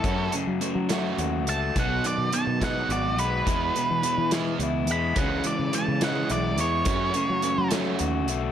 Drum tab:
HH |xxxxxx|xxxxxx|xxxxxx|xxxxxx|
SD |---o--|---o--|---o--|---o--|
BD |o-----|o--o--|o-----|o-----|

HH |xxxxxx|
SD |---o--|
BD |o-----|